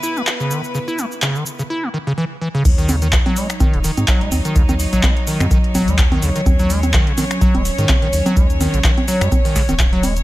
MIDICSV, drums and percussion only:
0, 0, Header, 1, 2, 480
1, 0, Start_track
1, 0, Key_signature, -6, "minor"
1, 0, Tempo, 476190
1, 753, Time_signature, 4, 2, 24, 8
1, 10313, End_track
2, 0, Start_track
2, 0, Title_t, "Drums"
2, 33, Note_on_c, 9, 82, 80
2, 134, Note_off_c, 9, 82, 0
2, 166, Note_on_c, 9, 82, 36
2, 267, Note_off_c, 9, 82, 0
2, 271, Note_on_c, 9, 39, 112
2, 274, Note_on_c, 9, 82, 46
2, 371, Note_off_c, 9, 39, 0
2, 374, Note_off_c, 9, 82, 0
2, 406, Note_on_c, 9, 82, 22
2, 507, Note_off_c, 9, 82, 0
2, 513, Note_on_c, 9, 82, 80
2, 614, Note_off_c, 9, 82, 0
2, 645, Note_on_c, 9, 82, 34
2, 746, Note_off_c, 9, 82, 0
2, 753, Note_on_c, 9, 82, 45
2, 854, Note_off_c, 9, 82, 0
2, 886, Note_on_c, 9, 82, 22
2, 987, Note_off_c, 9, 82, 0
2, 993, Note_on_c, 9, 82, 77
2, 1094, Note_off_c, 9, 82, 0
2, 1126, Note_on_c, 9, 82, 33
2, 1227, Note_off_c, 9, 82, 0
2, 1230, Note_on_c, 9, 39, 117
2, 1233, Note_on_c, 9, 82, 43
2, 1331, Note_off_c, 9, 39, 0
2, 1334, Note_off_c, 9, 82, 0
2, 1365, Note_on_c, 9, 82, 23
2, 1466, Note_off_c, 9, 82, 0
2, 1472, Note_on_c, 9, 82, 77
2, 1573, Note_off_c, 9, 82, 0
2, 1605, Note_on_c, 9, 82, 35
2, 1706, Note_off_c, 9, 82, 0
2, 2673, Note_on_c, 9, 36, 121
2, 2673, Note_on_c, 9, 42, 56
2, 2673, Note_on_c, 9, 49, 105
2, 2673, Note_on_c, 9, 82, 45
2, 2773, Note_off_c, 9, 36, 0
2, 2774, Note_off_c, 9, 42, 0
2, 2774, Note_off_c, 9, 49, 0
2, 2774, Note_off_c, 9, 82, 0
2, 2805, Note_on_c, 9, 42, 27
2, 2806, Note_on_c, 9, 82, 31
2, 2906, Note_off_c, 9, 42, 0
2, 2906, Note_off_c, 9, 82, 0
2, 2911, Note_on_c, 9, 46, 101
2, 2911, Note_on_c, 9, 63, 62
2, 2912, Note_on_c, 9, 82, 75
2, 3012, Note_off_c, 9, 46, 0
2, 3012, Note_off_c, 9, 63, 0
2, 3013, Note_off_c, 9, 82, 0
2, 3044, Note_on_c, 9, 42, 57
2, 3044, Note_on_c, 9, 82, 35
2, 3145, Note_off_c, 9, 42, 0
2, 3145, Note_off_c, 9, 82, 0
2, 3149, Note_on_c, 9, 39, 127
2, 3152, Note_on_c, 9, 42, 56
2, 3152, Note_on_c, 9, 82, 46
2, 3153, Note_on_c, 9, 36, 122
2, 3250, Note_off_c, 9, 39, 0
2, 3253, Note_off_c, 9, 36, 0
2, 3253, Note_off_c, 9, 42, 0
2, 3253, Note_off_c, 9, 82, 0
2, 3285, Note_on_c, 9, 42, 29
2, 3285, Note_on_c, 9, 63, 62
2, 3386, Note_off_c, 9, 42, 0
2, 3386, Note_off_c, 9, 63, 0
2, 3392, Note_on_c, 9, 46, 107
2, 3392, Note_on_c, 9, 82, 81
2, 3492, Note_off_c, 9, 46, 0
2, 3493, Note_off_c, 9, 82, 0
2, 3526, Note_on_c, 9, 26, 77
2, 3526, Note_on_c, 9, 42, 56
2, 3526, Note_on_c, 9, 82, 34
2, 3627, Note_off_c, 9, 26, 0
2, 3627, Note_off_c, 9, 42, 0
2, 3627, Note_off_c, 9, 82, 0
2, 3632, Note_on_c, 9, 42, 52
2, 3632, Note_on_c, 9, 63, 62
2, 3633, Note_on_c, 9, 36, 123
2, 3633, Note_on_c, 9, 82, 43
2, 3733, Note_off_c, 9, 36, 0
2, 3733, Note_off_c, 9, 42, 0
2, 3733, Note_off_c, 9, 63, 0
2, 3733, Note_off_c, 9, 82, 0
2, 3765, Note_on_c, 9, 42, 28
2, 3866, Note_off_c, 9, 42, 0
2, 3872, Note_on_c, 9, 46, 106
2, 3873, Note_on_c, 9, 82, 83
2, 3973, Note_off_c, 9, 46, 0
2, 3973, Note_off_c, 9, 82, 0
2, 4006, Note_on_c, 9, 42, 57
2, 4006, Note_on_c, 9, 63, 63
2, 4006, Note_on_c, 9, 82, 34
2, 4107, Note_off_c, 9, 42, 0
2, 4107, Note_off_c, 9, 63, 0
2, 4107, Note_off_c, 9, 82, 0
2, 4110, Note_on_c, 9, 39, 127
2, 4113, Note_on_c, 9, 26, 68
2, 4113, Note_on_c, 9, 36, 123
2, 4113, Note_on_c, 9, 42, 56
2, 4113, Note_on_c, 9, 82, 47
2, 4211, Note_off_c, 9, 39, 0
2, 4214, Note_off_c, 9, 26, 0
2, 4214, Note_off_c, 9, 36, 0
2, 4214, Note_off_c, 9, 42, 0
2, 4214, Note_off_c, 9, 82, 0
2, 4245, Note_on_c, 9, 42, 27
2, 4346, Note_off_c, 9, 42, 0
2, 4352, Note_on_c, 9, 46, 105
2, 4352, Note_on_c, 9, 63, 64
2, 4353, Note_on_c, 9, 82, 78
2, 4453, Note_off_c, 9, 46, 0
2, 4453, Note_off_c, 9, 63, 0
2, 4453, Note_off_c, 9, 82, 0
2, 4486, Note_on_c, 9, 42, 56
2, 4487, Note_on_c, 9, 82, 33
2, 4587, Note_off_c, 9, 42, 0
2, 4587, Note_off_c, 9, 82, 0
2, 4593, Note_on_c, 9, 36, 126
2, 4593, Note_on_c, 9, 42, 55
2, 4594, Note_on_c, 9, 82, 45
2, 4694, Note_off_c, 9, 36, 0
2, 4694, Note_off_c, 9, 42, 0
2, 4694, Note_off_c, 9, 82, 0
2, 4727, Note_on_c, 9, 42, 27
2, 4727, Note_on_c, 9, 63, 63
2, 4727, Note_on_c, 9, 82, 31
2, 4827, Note_off_c, 9, 42, 0
2, 4827, Note_off_c, 9, 63, 0
2, 4828, Note_off_c, 9, 82, 0
2, 4834, Note_on_c, 9, 46, 104
2, 4834, Note_on_c, 9, 82, 77
2, 4935, Note_off_c, 9, 46, 0
2, 4935, Note_off_c, 9, 82, 0
2, 4967, Note_on_c, 9, 42, 55
2, 4967, Note_on_c, 9, 82, 34
2, 5068, Note_off_c, 9, 42, 0
2, 5068, Note_off_c, 9, 82, 0
2, 5071, Note_on_c, 9, 39, 124
2, 5074, Note_on_c, 9, 36, 123
2, 5074, Note_on_c, 9, 42, 55
2, 5074, Note_on_c, 9, 63, 64
2, 5074, Note_on_c, 9, 82, 42
2, 5172, Note_off_c, 9, 39, 0
2, 5174, Note_off_c, 9, 36, 0
2, 5175, Note_off_c, 9, 42, 0
2, 5175, Note_off_c, 9, 63, 0
2, 5175, Note_off_c, 9, 82, 0
2, 5208, Note_on_c, 9, 42, 28
2, 5309, Note_off_c, 9, 42, 0
2, 5315, Note_on_c, 9, 46, 114
2, 5315, Note_on_c, 9, 82, 81
2, 5416, Note_off_c, 9, 46, 0
2, 5416, Note_off_c, 9, 82, 0
2, 5448, Note_on_c, 9, 26, 81
2, 5448, Note_on_c, 9, 42, 55
2, 5448, Note_on_c, 9, 63, 63
2, 5448, Note_on_c, 9, 82, 32
2, 5548, Note_off_c, 9, 26, 0
2, 5548, Note_off_c, 9, 42, 0
2, 5548, Note_off_c, 9, 63, 0
2, 5549, Note_off_c, 9, 82, 0
2, 5554, Note_on_c, 9, 36, 127
2, 5554, Note_on_c, 9, 42, 53
2, 5555, Note_on_c, 9, 82, 42
2, 5654, Note_off_c, 9, 36, 0
2, 5655, Note_off_c, 9, 42, 0
2, 5655, Note_off_c, 9, 82, 0
2, 5687, Note_on_c, 9, 42, 27
2, 5788, Note_off_c, 9, 42, 0
2, 5794, Note_on_c, 9, 36, 63
2, 5794, Note_on_c, 9, 46, 108
2, 5794, Note_on_c, 9, 63, 64
2, 5795, Note_on_c, 9, 82, 73
2, 5894, Note_off_c, 9, 36, 0
2, 5895, Note_off_c, 9, 46, 0
2, 5895, Note_off_c, 9, 63, 0
2, 5895, Note_off_c, 9, 82, 0
2, 5926, Note_on_c, 9, 42, 54
2, 5927, Note_on_c, 9, 82, 33
2, 6027, Note_off_c, 9, 42, 0
2, 6027, Note_off_c, 9, 82, 0
2, 6031, Note_on_c, 9, 39, 127
2, 6033, Note_on_c, 9, 36, 127
2, 6034, Note_on_c, 9, 26, 67
2, 6034, Note_on_c, 9, 42, 53
2, 6034, Note_on_c, 9, 82, 44
2, 6132, Note_off_c, 9, 39, 0
2, 6134, Note_off_c, 9, 36, 0
2, 6135, Note_off_c, 9, 26, 0
2, 6135, Note_off_c, 9, 42, 0
2, 6135, Note_off_c, 9, 82, 0
2, 6166, Note_on_c, 9, 42, 26
2, 6166, Note_on_c, 9, 63, 65
2, 6267, Note_off_c, 9, 42, 0
2, 6267, Note_off_c, 9, 63, 0
2, 6274, Note_on_c, 9, 46, 105
2, 6274, Note_on_c, 9, 82, 72
2, 6374, Note_off_c, 9, 46, 0
2, 6375, Note_off_c, 9, 82, 0
2, 6407, Note_on_c, 9, 42, 54
2, 6407, Note_on_c, 9, 82, 33
2, 6508, Note_off_c, 9, 42, 0
2, 6508, Note_off_c, 9, 82, 0
2, 6514, Note_on_c, 9, 36, 127
2, 6514, Note_on_c, 9, 42, 50
2, 6514, Note_on_c, 9, 63, 62
2, 6515, Note_on_c, 9, 82, 43
2, 6614, Note_off_c, 9, 36, 0
2, 6615, Note_off_c, 9, 42, 0
2, 6615, Note_off_c, 9, 63, 0
2, 6615, Note_off_c, 9, 82, 0
2, 6646, Note_on_c, 9, 42, 25
2, 6646, Note_on_c, 9, 82, 30
2, 6747, Note_off_c, 9, 42, 0
2, 6747, Note_off_c, 9, 82, 0
2, 6754, Note_on_c, 9, 46, 109
2, 6754, Note_on_c, 9, 82, 77
2, 6854, Note_off_c, 9, 46, 0
2, 6855, Note_off_c, 9, 82, 0
2, 6887, Note_on_c, 9, 42, 53
2, 6887, Note_on_c, 9, 63, 62
2, 6887, Note_on_c, 9, 82, 33
2, 6987, Note_off_c, 9, 42, 0
2, 6987, Note_off_c, 9, 63, 0
2, 6988, Note_off_c, 9, 82, 0
2, 6990, Note_on_c, 9, 39, 117
2, 6993, Note_on_c, 9, 36, 122
2, 6993, Note_on_c, 9, 42, 52
2, 6993, Note_on_c, 9, 82, 43
2, 7091, Note_off_c, 9, 39, 0
2, 7094, Note_off_c, 9, 36, 0
2, 7094, Note_off_c, 9, 42, 0
2, 7094, Note_off_c, 9, 82, 0
2, 7127, Note_on_c, 9, 42, 27
2, 7227, Note_off_c, 9, 42, 0
2, 7234, Note_on_c, 9, 46, 116
2, 7234, Note_on_c, 9, 63, 61
2, 7234, Note_on_c, 9, 82, 77
2, 7334, Note_off_c, 9, 46, 0
2, 7334, Note_off_c, 9, 63, 0
2, 7335, Note_off_c, 9, 82, 0
2, 7367, Note_on_c, 9, 26, 81
2, 7367, Note_on_c, 9, 42, 53
2, 7367, Note_on_c, 9, 82, 33
2, 7467, Note_off_c, 9, 26, 0
2, 7467, Note_off_c, 9, 42, 0
2, 7468, Note_off_c, 9, 82, 0
2, 7473, Note_on_c, 9, 36, 124
2, 7473, Note_on_c, 9, 42, 50
2, 7474, Note_on_c, 9, 82, 42
2, 7574, Note_off_c, 9, 36, 0
2, 7574, Note_off_c, 9, 42, 0
2, 7575, Note_off_c, 9, 82, 0
2, 7606, Note_on_c, 9, 42, 27
2, 7606, Note_on_c, 9, 63, 59
2, 7707, Note_off_c, 9, 42, 0
2, 7707, Note_off_c, 9, 63, 0
2, 7714, Note_on_c, 9, 46, 109
2, 7714, Note_on_c, 9, 82, 73
2, 7815, Note_off_c, 9, 46, 0
2, 7815, Note_off_c, 9, 82, 0
2, 7846, Note_on_c, 9, 42, 54
2, 7846, Note_on_c, 9, 82, 32
2, 7947, Note_off_c, 9, 42, 0
2, 7947, Note_off_c, 9, 82, 0
2, 7951, Note_on_c, 9, 39, 123
2, 7953, Note_on_c, 9, 36, 127
2, 7954, Note_on_c, 9, 26, 69
2, 7954, Note_on_c, 9, 42, 53
2, 7954, Note_on_c, 9, 63, 62
2, 7954, Note_on_c, 9, 82, 45
2, 8052, Note_off_c, 9, 39, 0
2, 8054, Note_off_c, 9, 36, 0
2, 8055, Note_off_c, 9, 26, 0
2, 8055, Note_off_c, 9, 42, 0
2, 8055, Note_off_c, 9, 63, 0
2, 8055, Note_off_c, 9, 82, 0
2, 8086, Note_on_c, 9, 42, 26
2, 8187, Note_off_c, 9, 42, 0
2, 8194, Note_on_c, 9, 46, 110
2, 8195, Note_on_c, 9, 82, 71
2, 8295, Note_off_c, 9, 46, 0
2, 8295, Note_off_c, 9, 82, 0
2, 8327, Note_on_c, 9, 42, 53
2, 8327, Note_on_c, 9, 63, 60
2, 8327, Note_on_c, 9, 82, 32
2, 8428, Note_off_c, 9, 42, 0
2, 8428, Note_off_c, 9, 63, 0
2, 8428, Note_off_c, 9, 82, 0
2, 8433, Note_on_c, 9, 36, 127
2, 8434, Note_on_c, 9, 42, 52
2, 8435, Note_on_c, 9, 82, 45
2, 8534, Note_off_c, 9, 36, 0
2, 8535, Note_off_c, 9, 42, 0
2, 8535, Note_off_c, 9, 82, 0
2, 8568, Note_on_c, 9, 42, 26
2, 8568, Note_on_c, 9, 82, 31
2, 8669, Note_off_c, 9, 42, 0
2, 8669, Note_off_c, 9, 82, 0
2, 8675, Note_on_c, 9, 46, 105
2, 8675, Note_on_c, 9, 63, 59
2, 8675, Note_on_c, 9, 82, 76
2, 8776, Note_off_c, 9, 46, 0
2, 8776, Note_off_c, 9, 63, 0
2, 8776, Note_off_c, 9, 82, 0
2, 8808, Note_on_c, 9, 42, 52
2, 8808, Note_on_c, 9, 82, 32
2, 8908, Note_off_c, 9, 42, 0
2, 8909, Note_off_c, 9, 82, 0
2, 8912, Note_on_c, 9, 39, 118
2, 8913, Note_on_c, 9, 36, 123
2, 8915, Note_on_c, 9, 42, 50
2, 8915, Note_on_c, 9, 82, 45
2, 9013, Note_off_c, 9, 39, 0
2, 9014, Note_off_c, 9, 36, 0
2, 9015, Note_off_c, 9, 42, 0
2, 9016, Note_off_c, 9, 82, 0
2, 9047, Note_on_c, 9, 42, 25
2, 9047, Note_on_c, 9, 63, 61
2, 9148, Note_off_c, 9, 42, 0
2, 9148, Note_off_c, 9, 63, 0
2, 9154, Note_on_c, 9, 46, 114
2, 9154, Note_on_c, 9, 82, 81
2, 9255, Note_off_c, 9, 46, 0
2, 9255, Note_off_c, 9, 82, 0
2, 9287, Note_on_c, 9, 26, 90
2, 9287, Note_on_c, 9, 42, 53
2, 9288, Note_on_c, 9, 82, 34
2, 9388, Note_off_c, 9, 26, 0
2, 9388, Note_off_c, 9, 42, 0
2, 9389, Note_off_c, 9, 82, 0
2, 9393, Note_on_c, 9, 36, 120
2, 9394, Note_on_c, 9, 42, 48
2, 9394, Note_on_c, 9, 63, 61
2, 9395, Note_on_c, 9, 82, 43
2, 9494, Note_off_c, 9, 36, 0
2, 9495, Note_off_c, 9, 42, 0
2, 9495, Note_off_c, 9, 63, 0
2, 9495, Note_off_c, 9, 82, 0
2, 9526, Note_on_c, 9, 46, 62
2, 9527, Note_on_c, 9, 82, 30
2, 9627, Note_off_c, 9, 46, 0
2, 9628, Note_off_c, 9, 82, 0
2, 9633, Note_on_c, 9, 36, 65
2, 9634, Note_on_c, 9, 38, 39
2, 9634, Note_on_c, 9, 46, 111
2, 9634, Note_on_c, 9, 82, 76
2, 9734, Note_off_c, 9, 36, 0
2, 9734, Note_off_c, 9, 38, 0
2, 9734, Note_off_c, 9, 46, 0
2, 9735, Note_off_c, 9, 82, 0
2, 9766, Note_on_c, 9, 42, 50
2, 9766, Note_on_c, 9, 63, 59
2, 9767, Note_on_c, 9, 82, 35
2, 9867, Note_off_c, 9, 42, 0
2, 9867, Note_off_c, 9, 63, 0
2, 9867, Note_off_c, 9, 82, 0
2, 9871, Note_on_c, 9, 39, 117
2, 9874, Note_on_c, 9, 26, 71
2, 9874, Note_on_c, 9, 36, 127
2, 9874, Note_on_c, 9, 42, 49
2, 9874, Note_on_c, 9, 82, 46
2, 9972, Note_off_c, 9, 39, 0
2, 9974, Note_off_c, 9, 36, 0
2, 9975, Note_off_c, 9, 26, 0
2, 9975, Note_off_c, 9, 42, 0
2, 9975, Note_off_c, 9, 82, 0
2, 10007, Note_on_c, 9, 42, 26
2, 10107, Note_off_c, 9, 42, 0
2, 10114, Note_on_c, 9, 46, 114
2, 10114, Note_on_c, 9, 63, 57
2, 10114, Note_on_c, 9, 82, 74
2, 10215, Note_off_c, 9, 46, 0
2, 10215, Note_off_c, 9, 63, 0
2, 10215, Note_off_c, 9, 82, 0
2, 10247, Note_on_c, 9, 42, 52
2, 10247, Note_on_c, 9, 82, 33
2, 10313, Note_off_c, 9, 42, 0
2, 10313, Note_off_c, 9, 82, 0
2, 10313, End_track
0, 0, End_of_file